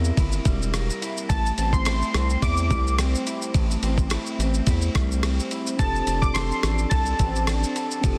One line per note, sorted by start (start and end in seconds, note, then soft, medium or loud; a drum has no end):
0.00 0.12 E2 medium
0.00 1.30 C3 medium
0.00 0.45 G3 medium
0.00 0.73 A#3 medium
0.00 0.17 E4 medium
0.04 shaker soft
0.17 0.40 G1 loud
0.17 1.02 E4 medium
0.17 kick medium
0.17 ride medium
0.17 shaker medium
0.32 shaker medium
0.45 0.90 E1 loud
0.45 2.71 G3 medium
0.45 kick medium
0.45 ride soft
0.45 shaker medium
0.62 shaker medium
0.74 1.36 A#3 medium
0.74 cross-stick medium
0.74 ride medium
0.74 shaker medium
0.90 shaker medium
1.02 1.86 E4 medium
1.02 ride soft
1.02 shaker soft
1.17 shaker medium
1.29 1.52 A1 medium
1.29 3.54 A2 medium
1.29 1.74 A5 medium
1.29 kick loud
1.29 ride medium
1.29 shaker medium
1.46 shaker medium
1.58 2.03 A1 medium
1.58 2.14 C4 medium
1.58 ride medium
1.58 shaker medium
1.73 1.84 C6 medium
1.73 kick medium
1.73 shaker medium
1.85 2.41 E4 medium
1.85 2.43 C6 medium
1.85 cross-stick loud
1.85 ride medium
1.85 shaker medium
2.02 shaker medium
2.14 2.37 C2 loud
2.14 2.99 C4 medium
2.14 cross-stick medium
2.14 ride soft
2.14 shaker soft
2.30 shaker medium
2.42 2.72 E2 loud
2.42 3.26 E4 medium
2.42 2.95 D6 loud
2.42 kick medium
2.42 ride medium
2.42 shaker medium
2.57 shaker medium
2.71 3.15 C2 loud
2.71 4.95 G3 medium
2.71 kick medium
2.71 ride soft
2.71 shaker medium
2.87 shaker medium
2.99 3.83 C4 medium
2.99 cross-stick medium
2.99 ride medium
2.99 shaker medium
3.15 shaker medium
3.27 4.10 E4 medium
3.27 ride soft
3.27 shaker medium
3.42 shaker medium
3.54 3.77 A1 loud
3.54 5.80 A2 medium
3.54 kick loud
3.54 ride medium
3.54 shaker medium
3.71 shaker medium
3.83 4.17 A1 medium
3.83 4.40 C4 medium
3.83 ride medium
3.83 shaker medium
3.98 kick loud
3.98 shaker medium
4.10 4.67 E4 medium
4.10 cross-stick medium
4.10 ride medium
4.10 shaker medium
4.26 shaker medium
4.39 4.61 A1 loud
4.39 5.23 C4 medium
4.39 ride soft
4.39 shaker medium
4.54 shaker medium
4.67 4.89 E2 loud
4.67 5.50 E4 medium
4.67 kick medium
4.67 ride medium
4.67 shaker medium
4.81 shaker medium
4.95 5.40 C2 loud
4.95 5.79 G3 medium
4.95 kick loud
4.95 cross-stick loud
4.95 ride soft
4.95 shaker medium
5.11 shaker medium
5.23 6.11 C4 medium
5.23 cross-stick medium
5.23 ride medium
5.23 shaker medium
5.40 shaker medium
5.51 5.86 E4 medium
5.51 ride soft
5.51 shaker soft
5.67 shaker medium
5.77 6.02 F1 loud
5.77 8.03 F3 medium
5.77 7.99 C4 medium
5.77 8.00 D4 medium
5.77 8.00 G4 medium
5.77 6.24 A5 loud
5.77 kick loud
5.77 ride medium
5.77 shaker medium
5.82 8.01 A4 medium
5.95 shaker medium
6.07 6.52 F1 loud
6.07 6.63 D4 medium
6.07 ride medium
6.07 shaker medium
6.22 6.35 D6 loud
6.22 kick loud
6.22 shaker medium
6.34 6.90 A4 medium
6.34 6.87 C6 medium
6.34 cross-stick loud
6.34 ride medium
6.34 shaker medium
6.51 shaker medium
6.63 6.86 A1 medium
6.63 7.47 D4 medium
6.63 cross-stick medium
6.63 ride soft
6.63 shaker medium
6.78 shaker soft
6.90 7.14 C2 medium
6.90 7.74 A4 medium
6.90 7.43 A5 medium
6.90 kick loud
6.90 ride medium
6.90 shaker medium
7.06 shaker medium
7.19 7.65 A1 loud
7.19 8.18 C4 medium
7.19 kick medium
7.19 ride soft
7.19 shaker medium
7.36 shaker medium
7.47 8.18 D4 medium
7.47 cross-stick medium
7.47 ride medium
7.47 shaker medium
7.63 shaker medium
7.76 8.18 A4 medium
7.76 ride soft
7.76 shaker soft
7.91 shaker medium
8.01 8.18 F1 loud
8.01 8.18 F3 medium
8.01 8.18 C4 medium
8.01 8.18 D4 medium
8.01 8.18 G4 medium
8.01 kick loud
8.01 ride medium
8.01 shaker medium
8.06 8.18 A4 medium